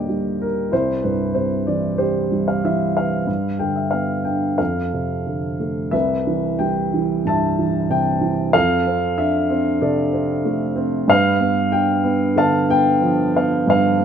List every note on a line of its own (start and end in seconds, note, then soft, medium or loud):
0.00 0.69 D#2 soft
0.00 0.73 A#2 soft
0.00 0.73 D3 soft
0.00 0.09 G3 soft
0.00 0.69 A#3 soft
0.00 0.74 G4 soft
0.00 0.73 C5 soft
0.00 0.73 D5 medium
0.00 0.74 D#5 medium
0.00 0.44 G5 medium
0.09 0.70 G3 soft
0.42 0.74 A#4 medium
0.71 3.24 C2 soft
0.71 1.95 E4 soft
0.71 1.02 C5 medium
1.02 2.28 G2 soft
1.02 1.36 B4 medium
1.35 2.60 C3 soft
1.35 1.64 C5 medium
1.67 2.63 E3 soft
1.67 2.00 D5 medium
1.98 3.24 G4 soft
1.98 2.49 C5 medium
2.32 3.25 G3 soft
2.48 2.63 F5 medium
2.65 3.26 E3 soft
2.65 2.94 E5 medium
2.97 4.23 B4 soft
2.97 3.57 F5 medium
3.27 4.55 G2 soft
3.59 4.57 D3 soft
3.59 3.75 G5 medium
3.76 3.93 E5 soft
3.91 4.57 B3 soft
3.91 4.23 F5 medium
4.24 4.59 D4 soft
4.24 4.60 G5 medium
4.58 5.90 F2 soft
4.58 5.89 A4 soft
4.58 5.56 F5 medium
4.94 5.91 C3 soft
5.27 5.92 D3 soft
5.60 5.92 A3 soft
5.91 8.51 C2 medium
5.91 7.22 B4 soft
5.91 6.55 E5 medium
6.27 6.92 E3 soft
6.59 7.88 G3 soft
6.59 7.22 G5 medium
6.93 7.57 E3 soft
7.25 8.51 G2 soft
7.25 8.52 E5 medium
7.25 7.88 A5 medium
7.59 8.20 E3 soft
7.90 8.53 C3 soft
7.90 8.57 G5 medium
8.21 8.53 E3 soft
8.53 11.04 F2 medium
8.53 9.78 A4 medium
8.53 9.20 F5 medium
8.86 9.48 C4 soft
9.17 10.41 D4 soft
9.17 9.78 E5 medium
9.50 10.11 C4 soft
9.81 11.05 C3 soft
9.81 11.05 A4 soft
9.81 10.73 D5 medium
10.13 10.74 C4 soft
10.45 11.07 A3 medium
10.76 11.07 C4 medium
11.08 13.63 G2 medium
11.08 12.33 B4 medium
11.08 11.75 F5 medium
11.40 12.02 B3 soft
11.72 12.98 D4 soft
11.72 12.32 G5 medium
12.04 12.67 B3 soft
12.36 13.63 D3 soft
12.36 13.35 F5 medium
12.36 12.67 A5 medium
12.69 13.34 B3 soft
12.69 13.37 G5 medium
13.02 14.05 F3 medium
13.35 13.97 B3 soft
13.35 13.68 F5 medium
13.67 14.05 G2 medium
13.67 14.05 B4 medium
13.67 14.05 F5 medium
13.99 14.05 B3 soft